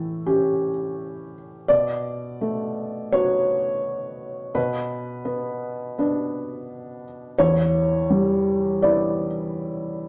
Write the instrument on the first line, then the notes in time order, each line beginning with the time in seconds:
felt piano
Already playing: A2 E3 A4
0.26 C#4 G4
1.68 B2 D5
2.41 A3
3.12 B3 F#4 C#5
4.55 B2 B4
5.25 B3
5.98 B3 D4
7.38 E2 C#5
8.10 G3
8.82 B3 E4 D5